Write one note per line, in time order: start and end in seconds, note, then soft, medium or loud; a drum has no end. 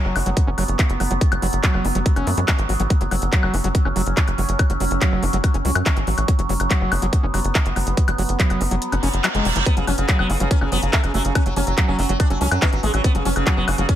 0.00 0.17 F#3 medium
0.00 9.65 F#3 medium
0.00 2.92 B3 medium
0.05 0.12 F#1 medium
0.16 0.23 F#1 loud
0.16 0.18 F#4 medium
0.16 open hi-hat loud
0.16 high woodblock medium
0.26 0.34 F#1 medium
0.26 0.30 F#3 medium
0.26 closed hi-hat soft
0.37 kick loud
0.37 closed hi-hat medium
0.47 0.55 F#1 medium
0.47 0.50 C#4 medium
0.58 0.65 F#1 loud
0.58 0.64 F#3 medium
0.58 open hi-hat loud
0.58 high woodblock soft
0.68 0.76 F#1 medium
0.68 closed hi-hat medium
0.79 0.83 E3 medium
0.79 kick loud
0.79 clap loud
0.79 closed hi-hat medium
0.90 0.97 F#1 medium
0.90 closed hi-hat soft
1.00 1.08 F#1 loud
1.00 1.02 F#3 medium
1.00 open hi-hat loud
1.00 high woodblock soft
1.11 1.18 F#1 medium
1.11 1.13 F#3 medium
1.11 closed hi-hat medium
1.21 kick loud
1.21 closed hi-hat medium
1.32 1.39 F#1 medium
1.32 1.34 F#3 medium
1.32 closed hi-hat soft
1.32 high woodblock medium
1.42 1.50 F#1 loud
1.42 1.46 F#3 loud
1.42 open hi-hat loud
1.53 1.60 F#1 medium
1.53 closed hi-hat soft
1.63 1.86 F#3 medium
1.63 kick loud
1.63 clap loud
1.63 closed hi-hat medium
1.74 1.81 F#1 medium
1.74 high woodblock soft
1.85 1.92 F#1 loud
1.85 1.87 F#4 medium
1.85 open hi-hat loud
1.95 2.03 F#1 medium
1.95 1.99 F#3 medium
1.95 closed hi-hat soft
2.06 kick loud
2.06 closed hi-hat medium
2.16 2.24 F#1 medium
2.16 2.28 C#4 medium
2.16 closed hi-hat soft
2.16 high woodblock soft
2.27 2.34 F#2 loud
2.27 2.31 G#3 loud
2.27 open hi-hat loud
2.37 2.45 F#2 medium
2.37 2.40 F#3 loud
2.37 closed hi-hat soft
2.48 2.52 F#3 loud
2.48 kick loud
2.48 clap loud
2.48 closed hi-hat medium
2.48 high woodblock medium
2.59 2.66 G#1 medium
2.59 closed hi-hat soft
2.69 2.77 G#1 medium
2.69 2.73 F#3 medium
2.69 open hi-hat loud
2.80 2.87 G#1 medium
2.80 2.82 F#3 medium
2.80 closed hi-hat medium
2.90 2.93 F#3 medium
2.90 6.30 C#4 medium
2.90 kick loud
2.90 closed hi-hat medium
3.01 3.08 F#1 medium
3.01 3.03 F#3 medium
3.01 closed hi-hat soft
3.11 3.19 F#1 loud
3.11 3.15 F#3 medium
3.11 open hi-hat loud
3.11 high woodblock soft
3.22 3.29 F#1 medium
3.22 closed hi-hat soft
3.33 3.55 F#3 medium
3.33 kick loud
3.33 clap loud
3.33 closed hi-hat medium
3.43 3.50 F#1 medium
3.43 high woodblock medium
3.54 3.61 F#1 loud
3.54 3.56 F#4 medium
3.54 open hi-hat loud
3.64 3.72 F#1 medium
3.64 3.68 F#3 medium
3.64 closed hi-hat soft
3.75 kick loud
3.75 closed hi-hat medium
3.85 3.93 F#1 medium
3.85 3.88 C#4 medium
3.85 high woodblock soft
3.96 4.03 F#1 loud
3.96 4.02 F#3 medium
3.96 open hi-hat loud
4.06 4.14 F#1 loud
4.06 closed hi-hat soft
4.17 4.21 E3 medium
4.17 kick loud
4.17 clap loud
4.17 closed hi-hat medium
4.28 4.35 F#1 medium
4.28 closed hi-hat soft
4.28 high woodblock soft
4.38 4.46 F#1 loud
4.38 4.40 F#3 medium
4.38 open hi-hat medium
4.49 4.56 F#1 medium
4.49 closed hi-hat medium
4.59 4.62 F#3 medium
4.59 kick loud
4.59 closed hi-hat medium
4.59 high woodblock medium
4.70 4.77 F#1 medium
4.70 4.72 F#3 medium
4.70 closed hi-hat soft
4.80 4.88 F#1 loud
4.80 4.84 F#3 loud
4.80 open hi-hat loud
4.91 4.98 F#1 loud
4.91 closed hi-hat soft
5.01 5.24 F#3 medium
5.01 kick loud
5.01 clap loud
5.01 closed hi-hat medium
5.01 high woodblock soft
5.12 5.19 F#1 medium
5.23 5.30 F#1 loud
5.23 5.25 F#4 medium
5.23 open hi-hat medium
5.33 5.41 F#1 loud
5.33 5.37 F#3 medium
5.33 closed hi-hat soft
5.44 kick loud
5.44 closed hi-hat medium
5.44 high woodblock soft
5.54 5.62 F#1 medium
5.54 5.57 C#4 medium
5.54 closed hi-hat soft
5.65 5.72 C#2 loud
5.65 5.71 F#3 medium
5.65 open hi-hat loud
5.75 5.83 F#2 loud
5.75 closed hi-hat medium
5.75 high woodblock medium
5.86 5.90 E3 medium
5.86 kick loud
5.86 clap loud
5.86 closed hi-hat medium
5.97 6.04 G#1 medium
5.97 closed hi-hat soft
6.07 6.15 A1 loud
6.07 6.09 F#3 medium
6.07 open hi-hat medium
6.18 6.25 A1 medium
6.18 closed hi-hat medium
6.18 high woodblock soft
6.28 6.31 F#3 medium
6.28 9.68 B3 medium
6.28 kick loud
6.28 closed hi-hat medium
6.39 6.46 F#1 medium
6.39 6.41 F#3 medium
6.39 closed hi-hat soft
6.49 6.57 F#1 loud
6.49 6.53 F#3 loud
6.49 open hi-hat loud
6.60 6.67 F#1 loud
6.60 closed hi-hat medium
6.60 high woodblock soft
6.71 6.93 F#3 medium
6.71 kick loud
6.71 clap loud
6.71 closed hi-hat medium
6.81 6.89 F#1 medium
6.92 6.99 F#1 loud
6.92 6.94 F#4 medium
6.92 open hi-hat medium
6.92 high woodblock medium
7.02 7.10 F#1 medium
7.02 7.06 F#3 medium
7.02 closed hi-hat medium
7.13 kick loud
7.13 closed hi-hat medium
7.23 7.31 F#1 medium
7.23 7.26 C#4 medium
7.34 7.41 F#1 loud
7.34 7.40 F#3 medium
7.34 open hi-hat loud
7.34 high woodblock soft
7.44 7.52 F#1 loud
7.44 closed hi-hat medium
7.55 7.59 E3 medium
7.55 kick loud
7.55 clap loud
7.55 closed hi-hat medium
7.66 7.73 F#1 medium
7.66 closed hi-hat soft
7.76 7.84 F#1 loud
7.76 7.78 F#3 medium
7.76 open hi-hat medium
7.76 high woodblock soft
7.87 7.94 F#1 loud
7.87 closed hi-hat medium
7.97 8.00 F#3 medium
7.97 kick loud
7.97 closed hi-hat medium
8.08 8.15 F#1 medium
8.08 8.10 F#3 medium
8.08 closed hi-hat soft
8.08 high woodblock medium
8.18 8.26 F#1 loud
8.18 8.22 F#3 loud
8.18 open hi-hat loud
8.29 8.36 F#1 medium
8.29 closed hi-hat medium
8.40 8.62 F#3 medium
8.40 kick loud
8.40 clap loud
8.40 closed hi-hat medium
8.50 8.58 F#1 medium
8.50 closed hi-hat soft
8.50 high woodblock soft
8.61 8.68 F#1 loud
8.61 8.63 F#4 medium
8.61 open hi-hat medium
8.71 8.79 F#1 medium
8.71 8.75 F#3 medium
8.71 closed hi-hat medium
8.82 closed hi-hat medium
8.82 reverse cymbal medium
8.92 9.00 F#1 medium
8.92 8.95 C#4 medium
8.92 closed hi-hat soft
8.92 high woodblock soft
9.03 9.10 F#1 loud
9.03 9.09 C#4 medium
9.03 open hi-hat loud
9.13 9.21 F#1 medium
9.13 closed hi-hat medium
9.24 9.28 F#3 loud
9.24 clap loud
9.24 closed hi-hat medium
9.24 high woodblock medium
9.35 9.42 F#1 medium
9.35 9.47 G#3 medium
9.35 closed hi-hat soft
9.45 9.53 E1 loud
9.45 9.49 F#3 medium
9.45 open hi-hat medium
9.56 9.63 F#1 medium
9.56 9.58 E3 medium
9.56 closed hi-hat medium
9.66 13.95 F#3 medium
9.66 9.69 F#3 medium
9.66 9.73 B3 loud
9.66 13.06 C#4 medium
9.66 kick loud
9.66 closed hi-hat medium
9.77 9.84 F#1 medium
9.77 9.84 C#3 medium
9.77 9.79 F#3 medium
9.77 closed hi-hat soft
9.87 9.95 F#1 loud
9.87 9.91 F#3 loud
9.87 9.95 C#4 medium
9.87 open hi-hat loud
9.87 high woodblock soft
9.98 10.05 F#1 medium
9.98 10.05 C#3 medium
9.98 closed hi-hat medium
10.09 10.16 C#3 medium
10.09 10.31 F#3 medium
10.09 kick loud
10.09 clap loud
10.09 closed hi-hat medium
10.19 10.27 F#1 medium
10.19 10.26 B3 loud
10.19 high woodblock medium
10.30 10.37 F#1 loud
10.30 10.37 C#3 medium
10.30 10.32 F#4 medium
10.30 open hi-hat loud
10.40 10.48 F#1 medium
10.40 10.47 C#3 medium
10.40 10.44 F#3 medium
10.40 closed hi-hat medium
10.51 10.58 C#4 medium
10.51 kick loud
10.51 closed hi-hat medium
10.61 10.69 F#1 medium
10.61 10.69 C#3 medium
10.61 10.64 C#4 medium
10.61 high woodblock soft
10.72 10.79 F#1 loud
10.72 10.78 F#3 medium
10.72 10.79 B3 medium
10.72 open hi-hat loud
10.82 10.90 F#1 medium
10.82 10.90 C#3 medium
10.82 closed hi-hat medium
10.93 10.97 E3 medium
10.93 11.00 A3 medium
10.93 kick loud
10.93 clap loud
10.93 closed hi-hat medium
11.04 11.11 F#1 medium
11.04 11.11 C#3 medium
11.04 closed hi-hat soft
11.04 high woodblock soft
11.14 11.22 F#1 loud
11.14 11.21 F#3 medium
11.14 11.18 A3 medium
11.14 open hi-hat medium
11.25 11.32 F#1 medium
11.25 11.32 C#3 medium
11.25 closed hi-hat medium
11.35 11.38 F#3 medium
11.35 11.42 C#4 loud
11.35 kick loud
11.35 closed hi-hat medium
11.35 high woodblock medium
11.46 11.53 F#1 medium
11.46 11.53 F#3 medium
11.46 11.48 F#3 medium
11.46 closed hi-hat soft
11.56 11.64 F#1 loud
11.56 11.60 F#3 loud
11.56 11.64 C#4 loud
11.56 open hi-hat loud
11.67 11.74 F#1 medium
11.67 11.74 F#3 medium
11.67 closed hi-hat medium
11.78 12.00 F#3 medium
11.78 11.85 F#3 medium
11.78 kick loud
11.78 clap loud
11.78 closed hi-hat medium
11.78 high woodblock soft
11.88 11.96 F#1 medium
11.88 11.95 C#4 medium
11.99 12.06 F#1 loud
11.99 12.06 F#3 medium
11.99 12.01 F#4 medium
11.99 open hi-hat loud
12.09 12.17 F#1 medium
12.09 12.13 F#3 medium
12.09 12.16 F#3 medium
12.09 closed hi-hat medium
12.20 12.27 D4 medium
12.20 kick loud
12.20 closed hi-hat medium
12.20 high woodblock soft
12.30 12.38 F#1 medium
12.30 12.38 F#3 medium
12.30 12.33 C#4 medium
12.30 closed hi-hat soft
12.41 12.48 C#2 loud
12.41 12.47 F#3 medium
12.41 12.48 C#4 medium
12.41 open hi-hat loud
12.51 12.59 F#2 medium
12.51 12.59 F#3 medium
12.51 closed hi-hat medium
12.51 high woodblock medium
12.62 12.66 E3 medium
12.62 12.69 B3 medium
12.62 kick loud
12.62 clap loud
12.62 closed hi-hat medium
12.73 12.80 G#1 medium
12.73 12.80 F#3 medium
12.73 closed hi-hat soft
12.83 12.91 A1 loud
12.83 12.90 G#3 medium
12.83 12.87 A3 medium
12.83 open hi-hat loud
12.94 13.01 A1 loud
12.94 13.01 F#3 medium
12.94 closed hi-hat medium
12.94 high woodblock soft
13.04 13.07 F#3 medium
13.04 13.11 B3 loud
13.04 13.95 F#4 medium
13.04 kick loud
13.04 closed hi-hat medium
13.15 13.22 F#1 medium
13.15 13.22 C#3 medium
13.15 13.17 F#3 medium
13.15 closed hi-hat soft
13.25 13.33 F#1 loud
13.25 13.29 F#3 loud
13.25 13.33 C#4 loud
13.25 open hi-hat loud
13.36 13.43 F#1 medium
13.36 13.43 C#3 medium
13.36 closed hi-hat soft
13.36 high woodblock soft
13.47 13.54 C#3 medium
13.47 13.69 F#3 medium
13.47 kick loud
13.47 clap loud
13.47 closed hi-hat medium
13.57 13.65 F#1 medium
13.57 13.64 B3 loud
13.68 13.75 F#1 loud
13.68 13.75 C#3 medium
13.68 13.70 F#4 medium
13.68 open hi-hat loud
13.68 high woodblock medium
13.78 13.86 F#1 medium
13.78 13.85 C#3 medium
13.78 13.82 F#3 medium
13.78 closed hi-hat soft
13.89 13.95 C#4 loud
13.89 kick loud
13.89 closed hi-hat medium